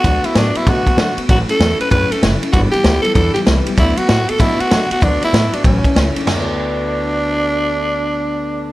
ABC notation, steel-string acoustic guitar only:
X:1
M:4/4
L:1/8
Q:"Swing" 1/4=193
K:D
V:1 name="Steel-string acoustic guitar"
[D,F,A,B,F] [A,B,F] [F,A,B,F] [A,B,F] [D,F,A,B,F] [A,B,F] [F,A,B,F] [A,B,F] | [A,,F,A,CE] [A,CE] [F,A,CE] [A,CE] [A,,F,A,CE] [A,CE] [F,A,CE] [A,CE] | [G,,D,E,G,B,E] [E,G,B,E] [E,G,B,E] [E,G,B,E] [G,,D,E,G,B,E] [E,G,B,E] [E,G,B,E] [E,G,B,E] | [D,F,A,B,F] [A,B,F] [F,A,B,F] [A,B,F] [D,F,A,B,F] [A,B,F] [F,A,B,F] [A,B,F] |
[D,F,A,B,F] [A,B,F] [F,A,B,F] [A,B,F] [A,,F,A,CE] [A,CE] [F,A,CE] [A,CE] | [D,A,B,F]8- | [D,A,B,F]8 |]